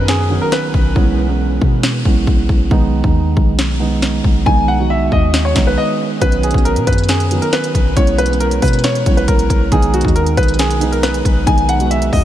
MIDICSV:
0, 0, Header, 1, 6, 480
1, 0, Start_track
1, 0, Tempo, 437956
1, 1051, Time_signature, 4, 2, 24, 8
1, 13415, End_track
2, 0, Start_track
2, 0, Title_t, "Grand piano"
2, 0, Program_c, 0, 0
2, 95, Note_on_c, 0, 68, 84
2, 431, Note_off_c, 0, 68, 0
2, 455, Note_on_c, 0, 70, 83
2, 567, Note_off_c, 0, 70, 0
2, 576, Note_on_c, 0, 71, 85
2, 1025, Note_off_c, 0, 71, 0
2, 4889, Note_on_c, 0, 80, 97
2, 5117, Note_off_c, 0, 80, 0
2, 5131, Note_on_c, 0, 78, 89
2, 5358, Note_off_c, 0, 78, 0
2, 5372, Note_on_c, 0, 76, 80
2, 5598, Note_off_c, 0, 76, 0
2, 5615, Note_on_c, 0, 75, 77
2, 5952, Note_off_c, 0, 75, 0
2, 5972, Note_on_c, 0, 73, 79
2, 6199, Note_off_c, 0, 73, 0
2, 6214, Note_on_c, 0, 71, 70
2, 6326, Note_off_c, 0, 71, 0
2, 6331, Note_on_c, 0, 75, 86
2, 6558, Note_off_c, 0, 75, 0
2, 6814, Note_on_c, 0, 71, 90
2, 7039, Note_off_c, 0, 71, 0
2, 7051, Note_on_c, 0, 68, 82
2, 7278, Note_off_c, 0, 68, 0
2, 7289, Note_on_c, 0, 70, 91
2, 7517, Note_off_c, 0, 70, 0
2, 7531, Note_on_c, 0, 71, 77
2, 7758, Note_off_c, 0, 71, 0
2, 7771, Note_on_c, 0, 68, 83
2, 8110, Note_off_c, 0, 68, 0
2, 8131, Note_on_c, 0, 70, 80
2, 8245, Note_off_c, 0, 70, 0
2, 8252, Note_on_c, 0, 71, 84
2, 8703, Note_off_c, 0, 71, 0
2, 8732, Note_on_c, 0, 73, 97
2, 8959, Note_off_c, 0, 73, 0
2, 8970, Note_on_c, 0, 71, 91
2, 9197, Note_off_c, 0, 71, 0
2, 9211, Note_on_c, 0, 70, 91
2, 9438, Note_off_c, 0, 70, 0
2, 9453, Note_on_c, 0, 71, 83
2, 9679, Note_off_c, 0, 71, 0
2, 9688, Note_on_c, 0, 73, 89
2, 10028, Note_off_c, 0, 73, 0
2, 10051, Note_on_c, 0, 71, 66
2, 10165, Note_off_c, 0, 71, 0
2, 10170, Note_on_c, 0, 70, 87
2, 10622, Note_off_c, 0, 70, 0
2, 10653, Note_on_c, 0, 68, 89
2, 10879, Note_off_c, 0, 68, 0
2, 10892, Note_on_c, 0, 66, 80
2, 11119, Note_off_c, 0, 66, 0
2, 11130, Note_on_c, 0, 70, 83
2, 11358, Note_off_c, 0, 70, 0
2, 11370, Note_on_c, 0, 71, 90
2, 11597, Note_off_c, 0, 71, 0
2, 11608, Note_on_c, 0, 68, 93
2, 11948, Note_off_c, 0, 68, 0
2, 11970, Note_on_c, 0, 70, 79
2, 12084, Note_off_c, 0, 70, 0
2, 12090, Note_on_c, 0, 71, 84
2, 12542, Note_off_c, 0, 71, 0
2, 12568, Note_on_c, 0, 80, 101
2, 12796, Note_off_c, 0, 80, 0
2, 12812, Note_on_c, 0, 78, 87
2, 13038, Note_off_c, 0, 78, 0
2, 13049, Note_on_c, 0, 76, 81
2, 13277, Note_off_c, 0, 76, 0
2, 13293, Note_on_c, 0, 75, 79
2, 13415, Note_off_c, 0, 75, 0
2, 13415, End_track
3, 0, Start_track
3, 0, Title_t, "Felt piano"
3, 0, Program_c, 1, 0
3, 0, Control_c, 1, 64, 127
3, 0, Note_on_c, 1, 51, 82
3, 0, Note_on_c, 1, 54, 73
3, 0, Note_on_c, 1, 59, 67
3, 0, Note_on_c, 1, 61, 90
3, 258, Note_off_c, 1, 51, 0
3, 260, Note_off_c, 1, 54, 0
3, 263, Note_off_c, 1, 59, 0
3, 266, Note_off_c, 1, 61, 0
3, 326, Note_on_c, 1, 51, 81
3, 332, Note_on_c, 1, 54, 66
3, 337, Note_on_c, 1, 59, 73
3, 342, Note_on_c, 1, 61, 83
3, 988, Note_off_c, 1, 51, 0
3, 991, Note_off_c, 1, 54, 0
3, 994, Note_off_c, 1, 59, 0
3, 996, Note_off_c, 1, 61, 0
3, 1041, Note_on_c, 1, 52, 93
3, 1046, Note_on_c, 1, 56, 81
3, 1051, Note_on_c, 1, 59, 86
3, 1057, Note_on_c, 1, 61, 102
3, 1065, Control_c, 1, 64, 0
3, 1241, Control_c, 1, 64, 127
3, 1376, Note_off_c, 1, 52, 0
3, 1378, Note_off_c, 1, 56, 0
3, 1381, Note_off_c, 1, 59, 0
3, 1384, Note_off_c, 1, 61, 0
3, 1401, Note_on_c, 1, 52, 80
3, 1406, Note_on_c, 1, 56, 70
3, 1412, Note_on_c, 1, 59, 72
3, 1417, Note_on_c, 1, 61, 83
3, 2175, Note_off_c, 1, 52, 0
3, 2178, Note_off_c, 1, 56, 0
3, 2181, Note_off_c, 1, 59, 0
3, 2183, Note_off_c, 1, 61, 0
3, 2250, Note_on_c, 1, 52, 83
3, 2255, Note_on_c, 1, 56, 69
3, 2260, Note_on_c, 1, 59, 68
3, 2266, Note_on_c, 1, 61, 80
3, 2910, Note_off_c, 1, 52, 0
3, 2913, Note_off_c, 1, 56, 0
3, 2915, Note_off_c, 1, 59, 0
3, 2918, Note_off_c, 1, 61, 0
3, 2965, Note_on_c, 1, 51, 91
3, 2970, Note_on_c, 1, 56, 92
3, 2975, Note_on_c, 1, 59, 93
3, 2980, Note_on_c, 1, 63, 106
3, 2984, Control_c, 1, 64, 0
3, 3202, Control_c, 1, 64, 127
3, 3298, Note_off_c, 1, 51, 0
3, 3300, Note_off_c, 1, 56, 0
3, 3303, Note_off_c, 1, 59, 0
3, 3305, Note_off_c, 1, 63, 0
3, 3330, Note_on_c, 1, 51, 78
3, 3336, Note_on_c, 1, 56, 75
3, 3340, Note_on_c, 1, 59, 69
3, 3345, Note_on_c, 1, 63, 86
3, 4100, Note_off_c, 1, 51, 0
3, 4103, Note_off_c, 1, 56, 0
3, 4105, Note_off_c, 1, 59, 0
3, 4108, Note_off_c, 1, 63, 0
3, 4152, Note_on_c, 1, 51, 74
3, 4158, Note_on_c, 1, 56, 74
3, 4164, Note_on_c, 1, 59, 73
3, 4168, Note_on_c, 1, 63, 88
3, 4821, Note_off_c, 1, 51, 0
3, 4824, Note_off_c, 1, 56, 0
3, 4827, Note_off_c, 1, 59, 0
3, 4829, Note_off_c, 1, 63, 0
3, 4880, Note_on_c, 1, 51, 97
3, 4886, Note_on_c, 1, 56, 85
3, 4891, Note_on_c, 1, 59, 86
3, 4896, Note_on_c, 1, 63, 104
3, 5215, Note_off_c, 1, 51, 0
3, 5218, Note_off_c, 1, 56, 0
3, 5221, Note_off_c, 1, 59, 0
3, 5223, Note_off_c, 1, 63, 0
3, 5245, Note_on_c, 1, 51, 70
3, 5250, Note_on_c, 1, 56, 69
3, 5256, Note_on_c, 1, 59, 69
3, 5261, Note_on_c, 1, 66, 89
3, 6017, Note_off_c, 1, 51, 0
3, 6020, Note_off_c, 1, 56, 0
3, 6023, Note_off_c, 1, 59, 0
3, 6025, Note_off_c, 1, 66, 0
3, 6075, Note_on_c, 1, 51, 73
3, 6079, Note_on_c, 1, 56, 73
3, 6085, Note_on_c, 1, 59, 71
3, 6091, Note_on_c, 1, 63, 87
3, 6742, Note_off_c, 1, 51, 0
3, 6745, Note_off_c, 1, 56, 0
3, 6747, Note_off_c, 1, 59, 0
3, 6750, Note_off_c, 1, 63, 0
3, 6803, Note_on_c, 1, 51, 97
3, 6807, Note_on_c, 1, 54, 83
3, 6813, Note_on_c, 1, 59, 88
3, 6818, Note_on_c, 1, 61, 101
3, 6825, Control_c, 1, 64, 0
3, 6994, Control_c, 1, 64, 127
3, 7137, Note_off_c, 1, 51, 0
3, 7139, Note_off_c, 1, 54, 0
3, 7142, Note_off_c, 1, 59, 0
3, 7144, Note_off_c, 1, 61, 0
3, 7166, Note_on_c, 1, 51, 78
3, 7171, Note_on_c, 1, 54, 72
3, 7176, Note_on_c, 1, 59, 69
3, 7181, Note_on_c, 1, 61, 93
3, 7938, Note_off_c, 1, 51, 0
3, 7940, Note_off_c, 1, 54, 0
3, 7943, Note_off_c, 1, 59, 0
3, 7946, Note_off_c, 1, 61, 0
3, 8010, Note_on_c, 1, 51, 79
3, 8015, Note_on_c, 1, 54, 67
3, 8020, Note_on_c, 1, 59, 68
3, 8026, Note_on_c, 1, 61, 83
3, 8670, Note_off_c, 1, 51, 0
3, 8673, Note_off_c, 1, 54, 0
3, 8675, Note_off_c, 1, 59, 0
3, 8678, Note_off_c, 1, 61, 0
3, 8722, Note_on_c, 1, 52, 95
3, 8727, Note_on_c, 1, 56, 80
3, 8733, Note_on_c, 1, 59, 91
3, 8738, Note_on_c, 1, 61, 102
3, 8748, Control_c, 1, 64, 0
3, 8939, Control_c, 1, 64, 127
3, 9056, Note_off_c, 1, 52, 0
3, 9059, Note_off_c, 1, 56, 0
3, 9062, Note_off_c, 1, 59, 0
3, 9064, Note_off_c, 1, 61, 0
3, 9083, Note_on_c, 1, 52, 78
3, 9088, Note_on_c, 1, 56, 70
3, 9093, Note_on_c, 1, 59, 72
3, 9099, Note_on_c, 1, 61, 86
3, 9856, Note_off_c, 1, 52, 0
3, 9859, Note_off_c, 1, 56, 0
3, 9861, Note_off_c, 1, 59, 0
3, 9864, Note_off_c, 1, 61, 0
3, 9932, Note_on_c, 1, 52, 81
3, 9936, Note_on_c, 1, 56, 67
3, 9942, Note_on_c, 1, 59, 71
3, 9947, Note_on_c, 1, 61, 77
3, 10591, Note_off_c, 1, 52, 0
3, 10593, Note_off_c, 1, 56, 0
3, 10596, Note_off_c, 1, 59, 0
3, 10598, Note_off_c, 1, 61, 0
3, 10647, Note_on_c, 1, 51, 97
3, 10653, Note_on_c, 1, 56, 92
3, 10658, Note_on_c, 1, 59, 93
3, 10663, Note_on_c, 1, 63, 102
3, 10664, Control_c, 1, 64, 0
3, 10871, Control_c, 1, 64, 127
3, 10979, Note_off_c, 1, 51, 0
3, 10982, Note_off_c, 1, 56, 0
3, 10984, Note_off_c, 1, 59, 0
3, 10987, Note_off_c, 1, 63, 0
3, 11013, Note_on_c, 1, 51, 78
3, 11019, Note_on_c, 1, 56, 73
3, 11024, Note_on_c, 1, 59, 68
3, 11029, Note_on_c, 1, 63, 82
3, 11782, Note_off_c, 1, 51, 0
3, 11784, Note_off_c, 1, 56, 0
3, 11787, Note_off_c, 1, 59, 0
3, 11790, Note_off_c, 1, 63, 0
3, 11834, Note_on_c, 1, 51, 76
3, 11839, Note_on_c, 1, 56, 72
3, 11845, Note_on_c, 1, 59, 72
3, 11850, Note_on_c, 1, 63, 89
3, 12502, Note_off_c, 1, 51, 0
3, 12505, Note_off_c, 1, 56, 0
3, 12507, Note_off_c, 1, 59, 0
3, 12510, Note_off_c, 1, 63, 0
3, 12560, Note_on_c, 1, 51, 92
3, 12565, Note_on_c, 1, 56, 83
3, 12571, Note_on_c, 1, 59, 86
3, 12576, Note_on_c, 1, 63, 100
3, 12895, Note_off_c, 1, 51, 0
3, 12898, Note_off_c, 1, 56, 0
3, 12901, Note_off_c, 1, 59, 0
3, 12903, Note_off_c, 1, 63, 0
3, 12923, Note_on_c, 1, 51, 73
3, 12929, Note_on_c, 1, 56, 68
3, 12933, Note_on_c, 1, 59, 71
3, 12939, Note_on_c, 1, 66, 85
3, 13415, Note_off_c, 1, 51, 0
3, 13415, Note_off_c, 1, 56, 0
3, 13415, Note_off_c, 1, 59, 0
3, 13415, Note_off_c, 1, 66, 0
3, 13415, End_track
4, 0, Start_track
4, 0, Title_t, "808-style bass"
4, 0, Program_c, 2, 38
4, 0, Note_on_c, 2, 42, 104
4, 427, Note_off_c, 2, 42, 0
4, 811, Note_on_c, 2, 35, 104
4, 1042, Note_off_c, 2, 35, 0
4, 1051, Note_on_c, 2, 35, 113
4, 1742, Note_off_c, 2, 35, 0
4, 1770, Note_on_c, 2, 47, 105
4, 2231, Note_off_c, 2, 47, 0
4, 2251, Note_on_c, 2, 35, 100
4, 2481, Note_off_c, 2, 35, 0
4, 2491, Note_on_c, 2, 35, 105
4, 2722, Note_off_c, 2, 35, 0
4, 2731, Note_on_c, 2, 35, 100
4, 2962, Note_off_c, 2, 35, 0
4, 2971, Note_on_c, 2, 35, 112
4, 3317, Note_off_c, 2, 35, 0
4, 3331, Note_on_c, 2, 39, 96
4, 3677, Note_off_c, 2, 39, 0
4, 3691, Note_on_c, 2, 35, 108
4, 4613, Note_off_c, 2, 35, 0
4, 4651, Note_on_c, 2, 35, 105
4, 4881, Note_off_c, 2, 35, 0
4, 4891, Note_on_c, 2, 35, 109
4, 5582, Note_off_c, 2, 35, 0
4, 5611, Note_on_c, 2, 39, 107
4, 6072, Note_off_c, 2, 39, 0
4, 6092, Note_on_c, 2, 35, 104
4, 6322, Note_off_c, 2, 35, 0
4, 6812, Note_on_c, 2, 35, 110
4, 7157, Note_off_c, 2, 35, 0
4, 7171, Note_on_c, 2, 35, 101
4, 7411, Note_on_c, 2, 47, 99
4, 7427, Note_off_c, 2, 35, 0
4, 7525, Note_off_c, 2, 47, 0
4, 7531, Note_on_c, 2, 42, 103
4, 8107, Note_off_c, 2, 42, 0
4, 8491, Note_on_c, 2, 35, 102
4, 8722, Note_off_c, 2, 35, 0
4, 8730, Note_on_c, 2, 35, 109
4, 9422, Note_off_c, 2, 35, 0
4, 9450, Note_on_c, 2, 47, 105
4, 9911, Note_off_c, 2, 47, 0
4, 9932, Note_on_c, 2, 35, 102
4, 10162, Note_off_c, 2, 35, 0
4, 10171, Note_on_c, 2, 35, 106
4, 10402, Note_off_c, 2, 35, 0
4, 10411, Note_on_c, 2, 35, 98
4, 10642, Note_off_c, 2, 35, 0
4, 10651, Note_on_c, 2, 35, 112
4, 10997, Note_off_c, 2, 35, 0
4, 11010, Note_on_c, 2, 39, 94
4, 11356, Note_off_c, 2, 39, 0
4, 11370, Note_on_c, 2, 35, 103
4, 12292, Note_off_c, 2, 35, 0
4, 12331, Note_on_c, 2, 35, 100
4, 12562, Note_off_c, 2, 35, 0
4, 12572, Note_on_c, 2, 35, 112
4, 13263, Note_off_c, 2, 35, 0
4, 13291, Note_on_c, 2, 39, 109
4, 13415, Note_off_c, 2, 39, 0
4, 13415, End_track
5, 0, Start_track
5, 0, Title_t, "Impact"
5, 0, Program_c, 3, 103
5, 0, Note_on_c, 3, 60, 87
5, 1051, Note_off_c, 3, 60, 0
5, 13415, End_track
6, 0, Start_track
6, 0, Title_t, "Drums"
6, 91, Note_on_c, 9, 38, 122
6, 200, Note_off_c, 9, 38, 0
6, 571, Note_on_c, 9, 38, 89
6, 681, Note_off_c, 9, 38, 0
6, 811, Note_on_c, 9, 36, 87
6, 921, Note_off_c, 9, 36, 0
6, 1051, Note_on_c, 9, 36, 110
6, 1160, Note_off_c, 9, 36, 0
6, 1770, Note_on_c, 9, 36, 92
6, 1880, Note_off_c, 9, 36, 0
6, 2010, Note_on_c, 9, 38, 119
6, 2120, Note_off_c, 9, 38, 0
6, 2251, Note_on_c, 9, 36, 92
6, 2361, Note_off_c, 9, 36, 0
6, 2491, Note_on_c, 9, 36, 93
6, 2601, Note_off_c, 9, 36, 0
6, 2731, Note_on_c, 9, 36, 89
6, 2841, Note_off_c, 9, 36, 0
6, 2971, Note_on_c, 9, 36, 106
6, 3081, Note_off_c, 9, 36, 0
6, 3330, Note_on_c, 9, 36, 101
6, 3440, Note_off_c, 9, 36, 0
6, 3690, Note_on_c, 9, 36, 88
6, 3800, Note_off_c, 9, 36, 0
6, 3931, Note_on_c, 9, 38, 122
6, 4040, Note_off_c, 9, 38, 0
6, 4411, Note_on_c, 9, 38, 90
6, 4520, Note_off_c, 9, 38, 0
6, 4651, Note_on_c, 9, 36, 88
6, 4761, Note_off_c, 9, 36, 0
6, 4891, Note_on_c, 9, 36, 114
6, 5001, Note_off_c, 9, 36, 0
6, 5611, Note_on_c, 9, 36, 91
6, 5720, Note_off_c, 9, 36, 0
6, 5850, Note_on_c, 9, 38, 120
6, 5960, Note_off_c, 9, 38, 0
6, 6090, Note_on_c, 9, 38, 100
6, 6092, Note_on_c, 9, 36, 94
6, 6200, Note_off_c, 9, 38, 0
6, 6202, Note_off_c, 9, 36, 0
6, 6812, Note_on_c, 9, 36, 106
6, 6812, Note_on_c, 9, 42, 90
6, 6921, Note_off_c, 9, 36, 0
6, 6921, Note_off_c, 9, 42, 0
6, 6928, Note_on_c, 9, 42, 52
6, 7037, Note_off_c, 9, 42, 0
6, 7052, Note_on_c, 9, 42, 68
6, 7131, Note_off_c, 9, 42, 0
6, 7131, Note_on_c, 9, 42, 55
6, 7171, Note_on_c, 9, 36, 97
6, 7212, Note_off_c, 9, 42, 0
6, 7212, Note_on_c, 9, 42, 39
6, 7281, Note_off_c, 9, 36, 0
6, 7293, Note_off_c, 9, 42, 0
6, 7293, Note_on_c, 9, 42, 73
6, 7402, Note_off_c, 9, 42, 0
6, 7411, Note_on_c, 9, 42, 61
6, 7521, Note_off_c, 9, 42, 0
6, 7531, Note_on_c, 9, 36, 91
6, 7531, Note_on_c, 9, 42, 78
6, 7591, Note_off_c, 9, 42, 0
6, 7591, Note_on_c, 9, 42, 67
6, 7640, Note_off_c, 9, 36, 0
6, 7651, Note_off_c, 9, 42, 0
6, 7651, Note_on_c, 9, 42, 55
6, 7711, Note_off_c, 9, 42, 0
6, 7711, Note_on_c, 9, 42, 46
6, 7766, Note_off_c, 9, 42, 0
6, 7766, Note_on_c, 9, 42, 82
6, 7771, Note_on_c, 9, 38, 122
6, 7876, Note_off_c, 9, 42, 0
6, 7880, Note_off_c, 9, 38, 0
6, 7893, Note_on_c, 9, 42, 57
6, 8003, Note_off_c, 9, 42, 0
6, 8012, Note_on_c, 9, 42, 80
6, 8121, Note_off_c, 9, 42, 0
6, 8134, Note_on_c, 9, 42, 45
6, 8244, Note_off_c, 9, 42, 0
6, 8250, Note_on_c, 9, 38, 94
6, 8250, Note_on_c, 9, 42, 80
6, 8360, Note_off_c, 9, 38, 0
6, 8360, Note_off_c, 9, 42, 0
6, 8371, Note_on_c, 9, 42, 59
6, 8481, Note_off_c, 9, 42, 0
6, 8491, Note_on_c, 9, 36, 84
6, 8494, Note_on_c, 9, 42, 72
6, 8600, Note_off_c, 9, 36, 0
6, 8603, Note_off_c, 9, 42, 0
6, 8731, Note_on_c, 9, 36, 113
6, 8731, Note_on_c, 9, 42, 90
6, 8840, Note_off_c, 9, 36, 0
6, 8840, Note_off_c, 9, 42, 0
6, 8847, Note_on_c, 9, 42, 52
6, 8956, Note_off_c, 9, 42, 0
6, 8970, Note_on_c, 9, 42, 69
6, 9051, Note_off_c, 9, 42, 0
6, 9051, Note_on_c, 9, 42, 54
6, 9130, Note_off_c, 9, 42, 0
6, 9130, Note_on_c, 9, 42, 41
6, 9212, Note_off_c, 9, 42, 0
6, 9212, Note_on_c, 9, 42, 75
6, 9321, Note_off_c, 9, 42, 0
6, 9331, Note_on_c, 9, 42, 60
6, 9440, Note_off_c, 9, 42, 0
6, 9450, Note_on_c, 9, 36, 94
6, 9451, Note_on_c, 9, 42, 75
6, 9453, Note_on_c, 9, 46, 82
6, 9511, Note_off_c, 9, 42, 0
6, 9511, Note_on_c, 9, 42, 67
6, 9560, Note_off_c, 9, 36, 0
6, 9562, Note_off_c, 9, 46, 0
6, 9570, Note_off_c, 9, 42, 0
6, 9570, Note_on_c, 9, 42, 56
6, 9631, Note_off_c, 9, 42, 0
6, 9631, Note_on_c, 9, 42, 45
6, 9686, Note_off_c, 9, 42, 0
6, 9686, Note_on_c, 9, 42, 83
6, 9690, Note_on_c, 9, 38, 121
6, 9796, Note_off_c, 9, 42, 0
6, 9800, Note_off_c, 9, 38, 0
6, 9814, Note_on_c, 9, 42, 58
6, 9923, Note_off_c, 9, 42, 0
6, 9932, Note_on_c, 9, 36, 95
6, 9932, Note_on_c, 9, 42, 80
6, 10042, Note_off_c, 9, 36, 0
6, 10042, Note_off_c, 9, 42, 0
6, 10055, Note_on_c, 9, 42, 43
6, 10165, Note_off_c, 9, 42, 0
6, 10171, Note_on_c, 9, 42, 81
6, 10172, Note_on_c, 9, 36, 93
6, 10281, Note_off_c, 9, 36, 0
6, 10281, Note_off_c, 9, 42, 0
6, 10292, Note_on_c, 9, 42, 59
6, 10401, Note_off_c, 9, 42, 0
6, 10411, Note_on_c, 9, 36, 87
6, 10415, Note_on_c, 9, 42, 75
6, 10521, Note_off_c, 9, 36, 0
6, 10524, Note_off_c, 9, 42, 0
6, 10651, Note_on_c, 9, 36, 108
6, 10651, Note_on_c, 9, 42, 90
6, 10761, Note_off_c, 9, 36, 0
6, 10761, Note_off_c, 9, 42, 0
6, 10768, Note_on_c, 9, 42, 53
6, 10877, Note_off_c, 9, 42, 0
6, 10891, Note_on_c, 9, 42, 66
6, 10971, Note_off_c, 9, 42, 0
6, 10971, Note_on_c, 9, 42, 54
6, 11010, Note_on_c, 9, 36, 102
6, 11051, Note_off_c, 9, 42, 0
6, 11051, Note_on_c, 9, 42, 40
6, 11120, Note_off_c, 9, 36, 0
6, 11132, Note_off_c, 9, 42, 0
6, 11132, Note_on_c, 9, 42, 76
6, 11242, Note_off_c, 9, 42, 0
6, 11250, Note_on_c, 9, 42, 63
6, 11360, Note_off_c, 9, 42, 0
6, 11370, Note_on_c, 9, 36, 93
6, 11370, Note_on_c, 9, 42, 76
6, 11430, Note_off_c, 9, 42, 0
6, 11430, Note_on_c, 9, 42, 65
6, 11480, Note_off_c, 9, 36, 0
6, 11490, Note_off_c, 9, 42, 0
6, 11490, Note_on_c, 9, 42, 57
6, 11550, Note_off_c, 9, 42, 0
6, 11550, Note_on_c, 9, 42, 45
6, 11606, Note_off_c, 9, 42, 0
6, 11606, Note_on_c, 9, 42, 81
6, 11611, Note_on_c, 9, 38, 121
6, 11716, Note_off_c, 9, 42, 0
6, 11720, Note_off_c, 9, 38, 0
6, 11733, Note_on_c, 9, 42, 59
6, 11842, Note_off_c, 9, 42, 0
6, 11851, Note_on_c, 9, 42, 80
6, 11961, Note_off_c, 9, 42, 0
6, 11975, Note_on_c, 9, 42, 45
6, 12084, Note_off_c, 9, 42, 0
6, 12092, Note_on_c, 9, 38, 90
6, 12092, Note_on_c, 9, 42, 79
6, 12201, Note_off_c, 9, 38, 0
6, 12202, Note_off_c, 9, 42, 0
6, 12212, Note_on_c, 9, 42, 58
6, 12322, Note_off_c, 9, 42, 0
6, 12331, Note_on_c, 9, 36, 87
6, 12336, Note_on_c, 9, 42, 74
6, 12441, Note_off_c, 9, 36, 0
6, 12445, Note_off_c, 9, 42, 0
6, 12571, Note_on_c, 9, 36, 110
6, 12572, Note_on_c, 9, 42, 92
6, 12681, Note_off_c, 9, 36, 0
6, 12681, Note_off_c, 9, 42, 0
6, 12689, Note_on_c, 9, 42, 51
6, 12798, Note_off_c, 9, 42, 0
6, 12810, Note_on_c, 9, 42, 69
6, 12919, Note_off_c, 9, 42, 0
6, 12934, Note_on_c, 9, 42, 51
6, 13043, Note_off_c, 9, 42, 0
6, 13054, Note_on_c, 9, 42, 74
6, 13163, Note_off_c, 9, 42, 0
6, 13172, Note_on_c, 9, 42, 61
6, 13282, Note_off_c, 9, 42, 0
6, 13291, Note_on_c, 9, 36, 89
6, 13293, Note_on_c, 9, 46, 81
6, 13400, Note_off_c, 9, 36, 0
6, 13403, Note_off_c, 9, 46, 0
6, 13415, End_track
0, 0, End_of_file